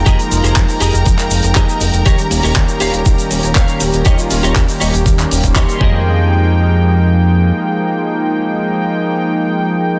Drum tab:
HH |xxoxxooxxxoxxxox|xxoo-xoxxxoxxxox|xxoxxooxxxoxxx--|----------------|
SH |xxxxxxxxxxxxxxxx|xxxxxxxxxxxxxxxx|xxxxxxxxxxxxxx--|----------------|
CP |----x----x--x---|----x-------x---|----x----x--x---|----------------|
BD |o---o---o---o---|o---o---o---o---|o---o---o--oo-o-|----------------|

HH |----------------|
SH |----------------|
CP |----------------|
BD |----------------|